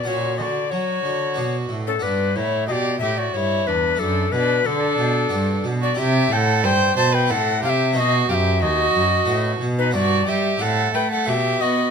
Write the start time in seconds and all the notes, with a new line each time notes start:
0.04 A#2 C#4 F#4 C#5 D5
0.38 D3 F#4 D#5
0.42 D5
0.71 F#3 F#4 C#5
1.05 D3
1.34 B2 B3 D4
1.69 A2
1.87 C#4 A4
1.99 G2 B3 D4 B4
2.04 D4
2.36 A2 E4 C#5
2.67 B2 G4 D#5
2.72 D5
2.99 A2 G4 E5
3.18 F#4 D5
3.33 G2 E4 C#5
3.67 E2 D4 B4
3.95 A3 D4 A4
4.00 F#2 D4
4.32 B2 D4 B4
4.65 D3 D4 A4
4.98 B2
5.29 G2 B3 D4
5.64 B2
5.82 F#4 D5
5.95 C3 C4 E4 G4
5.99 E5
6.30 A2 A4 G5
6.37 F#5
6.63 G2 C5 G5
6.97 B2 C5 A5
7.13 B4 G5
7.27 A2 C4 E4 A4 F#5
7.62 C3 G4 F5
7.69 E5
7.92 B2 B3 D#4
7.97 F#4 D#5 E5
8.29 F#2 G4 F5
8.34 E5
8.62 D#2 F#4 D#5
8.95 F#2
9.25 A2 B3 F#4
9.60 B2
9.78 D#4 B4
9.91 G2 B3 E4 D5
9.96 F#4
10.27 G3 G4 E5
10.58 A2 C4 E4 A4 F#5
10.94 A3 B4 G5
11.11 A4 F#5
11.24 B2 B3 A4 E5
11.28 G4
11.61 B3 F#4 D#5